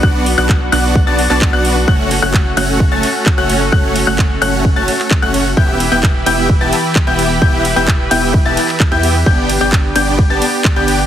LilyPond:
<<
  \new Staff \with { instrumentName = "Grand piano" } { \time 4/4 \key fis \phrygian \tempo 4 = 130 fis'''8 r16 fis'''16 r8 fis'''8 r16 a'''16 r16 a'''8 fis'''8 r16 | fis'''8 r16 fis'''16 r8 fis'''8 r16 a'''16 r8. fis'''8 r16 | fis'''8 r16 fis'''16 r8 fis'''8 r16 a'''16 r8. fis'''8 r16 | g'''8 r16 g'''16 r8 g'''8 r16 a'''16 r8. g'''8 r16 |
g'''8 r16 g'''16 r8 g'''8 r16 a'''16 r8. g'''8 r16 | g'''8 r16 g'''16 r8 g'''8 r16 a'''16 r8. g'''8 r16 | }
  \new Staff \with { instrumentName = "Supersaw synth" } { \time 4/4 \key fis \phrygian <b d' fis' d'' fis''>8 r16 <b d' fis' d'' fis''>16 r8 <b d' fis' d'' fis''>8 r16 <b d' fis' d'' a''>16 r16 <b d' fis' d'' a''>8 <b d' fis' d'' fis''>8 r16 | <a cis' fis' cis'' fis''>8 r16 <a cis' fis' cis'' fis''>16 r8 <a cis' fis' cis'' fis''>8 r16 <a cis' fis' cis'' a''>16 r8. <a cis' fis' cis'' fis''>8 r16 | <a cis' fis' cis'' fis''>8 r16 <a cis' fis' cis'' fis''>16 r8 <a cis' fis' cis'' fis''>8 r16 <a cis' fis' cis'' a''>16 r8. <a cis' fis' cis'' fis''>8 r16 | <b e' g' e'' g''>8 r16 <b e' g' e'' g''>16 r8 <b e' g' e'' g''>8 r16 <b e' g' e'' a''>16 r8. <b e' g' e'' g''>8 r16 |
<b e' g' e'' g''>8 r16 <b e' g' e'' g''>16 r8 <b e' g' e'' g''>8 r16 <b e' g' e'' a''>16 r8. <b e' g' e'' g''>8 r16 | <b d' g' d'' g''>8 r16 <b d' g' d'' g''>16 r8 <b d' g' d'' g''>8 r16 <b d' g' d'' a''>16 r8. <b d' g' d'' g''>8 r16 | }
  \new Staff \with { instrumentName = "Analog synth pad" } { \time 4/4 \key fis \phrygian << { fis'1~ | fis'1~ | fis'1 | <e b'>1~ |
<e b'>1 | g'1 | } \\ { <b d'>1 | <a cis'>1~ | <a cis'>1 | <e' g'>1~ |
<e' g'>1 | <b d'>1 | } >> }
  \new Staff \with { instrumentName = "Sub bass" } { \clef bass \time 4/4 \key fis \phrygian b,,8. b,,8. b,,8. b,,8 b,,8 b,,8. | fis,,8. fis,,8. fis,,8. fis,,16 r8. fis,,8. | fis,,8. fis,,8. fis,,8. fis,,16 r8. fis,,8. | e,,8. e,,8. e,,8. e,,16 r8. e,,8. |
e,,8. e,,8. e,,8. e,,16 r8. e,8. | g,,8. g,,8. g,,8. g,,16 r8. g,,8. | }
  \new DrumStaff \with { instrumentName = "Drums" } \drummode { \time 4/4 bd8 hho8 <hc bd>8 hho8 bd8 hho16 hc16 <hc bd>8 hho8 | bd8 <hho cymr>8 <hc bd>8 <hho cymr>8 bd8 <hho cymr>8 <hc bd>8 <hho cymr>8 | bd8 <hho cymr>8 <hc bd>8 <hho cymr>8 bd8 <hho cymr>16 hc16 <hc bd>8 <hho cymr>8 | bd8 <hho cymr>8 <hc bd>8 <hho cymr>8 bd8 <hho cymr>8 <hc bd>8 <hho cymr>8 |
bd8 <hho cymr>8 <hc bd>8 <hho cymr>8 bd8 <hho cymr>16 hc16 <hc bd>8 <hho cymr>8 | bd8 <hho cymr>8 <hc bd>8 <hho cymr>8 bd8 <hho cymr>8 <hc bd>8 <hho cymr>8 | }
>>